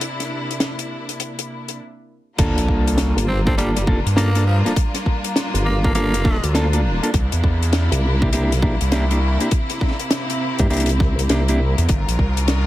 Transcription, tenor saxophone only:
3.28 C4
3.47 C4
3.58 G3
3.76 G3
4.16 A#3
4.46 F3
4.66 F3
5.65 A#3
5.84 A#3
5.95 A#3

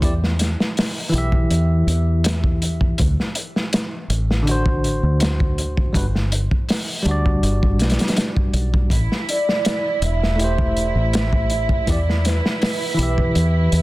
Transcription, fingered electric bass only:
0.02 E2
1.13 B1
1.50 E2
1.87 E2
2.99 D2
4.10 A1
5.03 D2
5.95 G1
7.06 D2
7.43 G1
7.79 B1
8.54 B1
8.90 A1
10.02 E1
10.95 A1
11.88 E2
12.99 B1
13.35 E2
13.72 E2

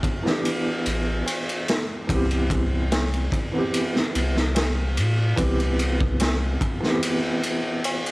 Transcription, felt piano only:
Already playing: E3 B3 D4 G4
0.23 E3 B3
0.28 D4 G4
2.07 E3 B3
2.12 C4 G4
3.52 E3 B3
3.56 C4 G4
5.36 E3 B3
5.41 C4 G4
6.80 E3 B3
6.86 C4 G4

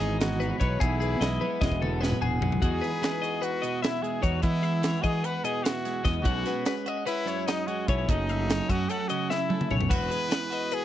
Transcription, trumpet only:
Already playing: G#4
0.20 F#4
0.59 B4
0.81 E4
2.62 G#4
3.44 F#4
3.82 E4
4.03 G#4
4.24 F#4
4.43 E4
5.02 G#4
5.25 B4
5.44 G#4
5.63 F#4
6.22 F#4
7.07 E4
7.47 D#4
7.67 F#4
7.87 E4
8.09 D#4
8.70 F#4
8.89 A4
9.08 F#4
9.31 E4
9.90 B4
10.74 G#4

